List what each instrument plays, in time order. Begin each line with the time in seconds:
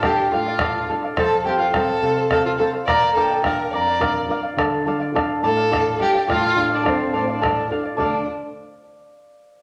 Already playing: harp F5 A5
0.03 nylon-string guitar D4 F4 A4, violin G4, charango A4 D5 F5, harp G5, bombo rim, bombo low
0.31 nylon-string guitar A2, violin F4, charango A4 D5 F5, harp F5, bombo rim
0.46 charango D5 F5, bombo rim
0.59 nylon-string guitar D4 F4 A4, charango A4 D5 F5, bombo rim, bombo low
0.89 nylon-string guitar D4 F4 A4, charango A4 D5 F5
1.03 charango D5 F5, bombo rim
1.17 nylon-string guitar F3, violin A4, charango A4 C5 F5, harp A5, bombo rim, bombo low
1.32 bombo rim
1.45 nylon-string guitar C4 F4 A4, violin G4, charango A4 C5 F5, harp G5, bombo rim
1.59 violin F4, charango C5 F5, harp F5, bombo rim
1.73 nylon-string guitar C4 F4 A4, violin A4, charango A4 C5 F5, harp A5, bombo rim, bombo low
2.02 nylon-string guitar C3, charango A4 C5 F5
2.16 charango C5 F5
2.31 nylon-string guitar C4 F4 A4, charango A4 C5 F5, violin A4, harp A5, bombo rim, bombo low
2.46 violin F4, harp F5
2.58 nylon-string guitar C4 F4 A4, violin A4, charango A4 C5 F5, harp A5
2.73 charango C5 F5, bombo rim
2.86 nylon-string guitar A#2, charango A#4 D5 F5, violin D5, harp A#5, bombo rim, bombo low
3.02 bombo rim
3.15 nylon-string guitar D4 F4 A#4, violin A4, charango A#4 D5 F5, harp G5, bombo rim
3.31 charango D5 F5, bombo rim
3.44 nylon-string guitar D4 F4 A#4, violin A#4, charango A#4 D5 F5, harp A5, bombo rim, bombo low
3.73 nylon-string guitar F2, charango A#4 D5 F5, violin D5, harp A#5
3.87 charango D5 F5
4.00 nylon-string guitar D4 F4 A#4, charango A#4 D5 F5, bombo rim, bombo low
4.28 nylon-string guitar D4 F4 A#4, charango A#4 D5 F5
4.43 charango D5 F5
4.57 nylon-string guitar D3, charango A4 D5 F5, bombo rim, bombo low
4.73 bombo rim
4.86 nylon-string guitar D4 F4 A4, charango A4 D5 F5, bombo rim
5.00 charango D5 F5, bombo rim
5.14 nylon-string guitar D4 F4 A4, charango A4 D5 F5, bombo rim, bombo low
5.43 nylon-string guitar A2, charango A4 D5 F5, violin A4, harp A5
5.57 charango D5 F5
5.71 nylon-string guitar D4 F4 A4, charango A4 D5 F5, bombo rim, bombo low
6.00 nylon-string guitar D4 F4 A4, violin G4, charango A4 D5 F5, harp G5
6.15 charango D5 F5, bombo rim
6.28 nylon-string guitar A2, violin F4, charango A4 D5 F5, harp F5, bombo rim, bombo low
6.45 bombo rim
6.56 nylon-string guitar D4 F4 A4, charango A4 D5 F5
6.70 charango D5 F5
6.74 violin D4, harp D5
6.83 nylon-string guitar D4 F4 A4, charango A4 D5 F5, bombo rim, bombo low
6.88 violin C4, harp C5
7.02 bombo rim
7.13 nylon-string guitar A2, charango A4 D5 F5, harp D5
7.18 violin D4, harp C5
7.22 violin C4
7.28 violin D4, charango D5 F5, harp D5
7.41 nylon-string guitar D4 F4 A4, charango A4 D5 F5, bombo rim, bombo low
7.71 nylon-string guitar D4 F4 A4, charango A4 D5 F5
7.84 charango D5 F5
7.97 nylon-string guitar D3 A3 D4 F4 A4, violin D4, charango A4 D5 F5, harp D5, bombo low